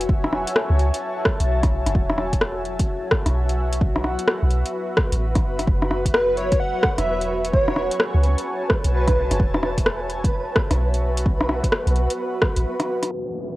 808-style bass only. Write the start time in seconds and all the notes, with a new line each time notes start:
Already playing: E1
0.70 C#2
1.40 B1
1.86 F#1
1.95 E1
3.26 B1
4.43 B1
5.12 A1
5.44 F#1
5.67 F#1
6.98 E1
8.14 C#2
8.84 B1
9.31 F#1
9.40 E1
10.71 B1
11.87 B1
12.56 A1